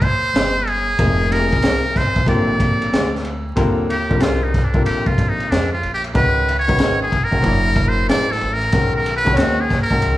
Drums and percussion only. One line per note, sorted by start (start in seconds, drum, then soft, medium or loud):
0.02 kick medium
0.02 ride medium
0.36 snare loud
0.36 hi-hat pedal soft
0.36 ride medium
0.67 ride soft
0.99 kick loud
0.99 ride medium
1.32 ride medium
1.52 kick medium
1.52 ride soft
1.62 snare loud
1.62 hi-hat pedal medium
1.62 ride medium
1.96 kick medium
1.96 snare soft
1.96 ride medium
2.16 kick medium
2.16 ride soft
2.26 kick medium
2.26 ride medium
2.60 kick medium
2.60 ride medium
2.82 ride medium
2.93 snare loud
2.93 hi-hat pedal soft
2.93 ride medium
3.15 snare soft
3.25 ride soft
3.57 kick loud
3.57 ride medium
3.90 ride medium
4.11 kick medium
4.20 snare loud
4.20 hi-hat pedal medium
4.20 ride medium
4.54 kick medium
4.54 snare soft
4.54 ride soft
4.74 kick medium
4.74 ride soft
4.86 ride medium
5.06 kick medium
5.18 kick medium
5.18 ride medium
5.40 ride soft
5.52 snare loud
5.52 hi-hat pedal soft
5.52 ride medium
5.83 ride soft
6.04 ride soft
6.15 kick loud
6.15 ride medium
6.48 ride medium
6.68 kick loud
6.68 ride soft
6.78 snare loud
6.78 hi-hat pedal medium
6.78 ride medium
7.12 kick medium
7.12 ride medium
7.32 kick medium
7.32 ride soft
7.43 kick medium
7.43 ride medium
7.76 kick medium
7.76 ride medium
8.09 snare loud
8.09 hi-hat pedal soft
8.09 ride medium
8.31 snare soft
8.41 ride soft
8.61 ride soft
8.72 kick loud
8.72 ride medium
9.06 ride medium
9.26 kick medium
9.26 ride soft
9.37 snare loud
9.37 hi-hat pedal medium
9.37 ride medium
9.70 kick medium
9.70 snare soft
9.70 ride medium
9.90 kick medium
9.90 ride soft
10.02 ride medium